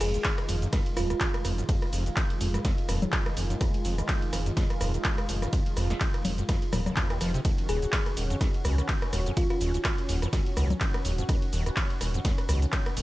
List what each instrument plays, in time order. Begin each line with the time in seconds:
Already playing: analog synth pad D#3 G#3 F4
0.01 analog synth bass F1, acid bass F2, synth pluck G#4, cross-stick, open hi-hat, shaker
0.14 acid bass D#2, closed hi-hat, shaker
0.24 kick, clap, closed hi-hat, ride, shaker
0.38 cross-stick, closed hi-hat
0.49 analog synth bass F1, acid bass F2, open hi-hat, shaker
0.62 acid bass F#2, closed hi-hat, shaker
0.73 acid bass F2, kick, cross-stick, snare, closed hi-hat, ride, shaker
0.86 closed hi-hat
0.97 analog synth bass D#1, acid bass F2, synth pluck F4, cross-stick, open hi-hat, shaker
1.10 acid bass D#2, cross-stick, closed hi-hat, shaker
1.20 kick, clap, closed hi-hat, ride, shaker
1.34 cross-stick, closed hi-hat
1.45 analog synth bass F1, acid bass F2, cross-stick, open hi-hat, shaker
1.58 acid bass F#2, closed hi-hat, shaker
1.69 acid bass F2, kick, closed hi-hat, ride, shaker
1.82 cross-stick, closed hi-hat
1.93 analog synth bass F1, acid bass F2, open hi-hat, shaker
2.06 acid bass D#2, closed hi-hat, shaker
2.16 kick, cross-stick, clap, closed hi-hat, ride, shaker
2.30 closed hi-hat
2.41 analog synth bass F1, acid bass F2, open hi-hat, shaker
2.54 acid bass F#2, cross-stick, closed hi-hat, shaker
2.65 acid bass F2, kick, snare, closed hi-hat, ride, shaker
2.78 closed hi-hat
2.89 analog synth bass D#1, acid bass F2, cross-stick, open hi-hat, shaker
3.02 acid bass D#2, closed hi-hat, low conga, shaker
3.12 kick, clap, closed hi-hat, ride, shaker
3.26 cross-stick, closed hi-hat
3.37 analog synth bass F1, acid bass F2, open hi-hat, shaker
3.50 acid bass F#2, closed hi-hat, shaker
3.61 acid bass F2, kick, cross-stick, closed hi-hat, ride, shaker
3.74 closed hi-hat
3.85 analog synth bass F1, acid bass F2, open hi-hat, shaker
3.98 acid bass D#2, cross-stick, closed hi-hat, shaker
4.08 kick, clap, closed hi-hat, ride, shaker
4.22 closed hi-hat
4.33 analog synth bass F1, acid bass F2, cross-stick, open hi-hat, shaker
4.46 acid bass F#2, closed hi-hat, shaker
4.57 acid bass F2, kick, snare, closed hi-hat, ride, shaker
4.70 cross-stick, closed hi-hat
4.81 analog synth bass D#1, acid bass F2, cross-stick, open hi-hat, shaker
4.94 acid bass D#2, closed hi-hat, shaker
5.04 kick, cross-stick, clap, closed hi-hat, ride, shaker
5.18 cross-stick, closed hi-hat
5.29 analog synth bass F1, acid bass F2, open hi-hat, shaker
5.42 acid bass F#2, cross-stick, closed hi-hat, shaker
5.53 acid bass F2, kick, closed hi-hat, ride, shaker
5.66 closed hi-hat
5.77 analog synth bass F1, acid bass F2, cross-stick, open hi-hat, shaker
5.90 acid bass D#2, snare, closed hi-hat, shaker
6.00 kick, clap, closed hi-hat, ride, shaker
6.14 cross-stick, closed hi-hat
6.25 analog synth bass F1, acid bass F2, open hi-hat, low conga, shaker
6.38 acid bass F#2, closed hi-hat, shaker
6.49 acid bass F2, kick, cross-stick, snare, closed hi-hat, ride, shaker
6.62 closed hi-hat
6.73 analog synth bass D#1, acid bass A#2, cross-stick, open hi-hat, low conga, shaker
6.86 acid bass F1, cross-stick, closed hi-hat, low conga, shaker
6.96 acid bass F2, kick, clap, closed hi-hat, ride, shaker
7.10 acid bass D#2, cross-stick, closed hi-hat
7.21 analog synth bass F1, acid bass F3, cross-stick, open hi-hat, shaker
7.34 acid bass C3, closed hi-hat, shaker
7.45 acid bass D#2, analog synth pad C#4 F#4, kick, closed hi-hat, ride, shaker
7.58 closed hi-hat
7.69 analog synth bass D#1, acid bass D#2, synth pluck G#4, cross-stick, open hi-hat, shaker
7.82 acid bass C#2, closed hi-hat, shaker
7.92 kick, clap, closed hi-hat, ride, shaker
8.06 cross-stick, closed hi-hat
8.17 analog synth bass D#1, acid bass D#2, open hi-hat, shaker
8.30 acid bass F2, closed hi-hat, shaker
8.41 acid bass D#2, kick, cross-stick, snare, closed hi-hat, ride, shaker
8.54 closed hi-hat
8.65 analog synth bass C#2, acid bass D#2, cross-stick, open hi-hat, shaker
8.78 acid bass C#2, cross-stick, closed hi-hat, shaker
8.88 kick, clap, closed hi-hat, ride, shaker
9.02 cross-stick, closed hi-hat
9.13 analog synth bass D#1, acid bass D#2, cross-stick, open hi-hat, shaker
9.26 acid bass F2, closed hi-hat, shaker
9.37 acid bass D#2, synth pluck F4, kick, closed hi-hat, ride, shaker
9.50 synth pluck F4, cross-stick, closed hi-hat
9.61 analog synth bass D#1, acid bass D#2, open hi-hat, shaker
9.74 acid bass C#2, closed hi-hat, shaker
9.84 kick, cross-stick, clap, closed hi-hat, ride, shaker
9.98 closed hi-hat
10.09 analog synth bass D#1, acid bass D#2, open hi-hat, shaker
10.22 acid bass F2, cross-stick, closed hi-hat, shaker
10.33 acid bass D#2, kick, snare, closed hi-hat, ride, shaker
10.46 closed hi-hat
10.57 analog synth bass C#2, acid bass D#2, cross-stick, open hi-hat, shaker
10.70 acid bass C#2, closed hi-hat, low conga, shaker
10.80 kick, clap, closed hi-hat, ride, shaker
10.94 cross-stick, closed hi-hat
11.05 analog synth bass D#1, acid bass D#2, open hi-hat, shaker
11.18 acid bass F2, closed hi-hat, shaker
11.29 acid bass D#2, kick, cross-stick, closed hi-hat, ride, shaker
11.42 closed hi-hat
11.53 analog synth bass D#1, acid bass D#2, open hi-hat, shaker
11.66 acid bass C#2, cross-stick, closed hi-hat, shaker
11.76 kick, clap, closed hi-hat, ride, shaker
11.90 closed hi-hat
12.01 analog synth bass D#1, acid bass D#2, cross-stick, open hi-hat, shaker
12.14 acid bass F2, closed hi-hat, shaker
12.25 acid bass D#2, kick, snare, closed hi-hat, ride, shaker
12.38 cross-stick, closed hi-hat
12.49 analog synth bass C#2, acid bass D#2, cross-stick, open hi-hat, shaker
12.62 acid bass C#2, closed hi-hat, shaker
12.72 kick, cross-stick, clap, closed hi-hat, ride, shaker
12.86 cross-stick, closed hi-hat
12.97 analog synth bass D#1, acid bass D#2, open hi-hat, shaker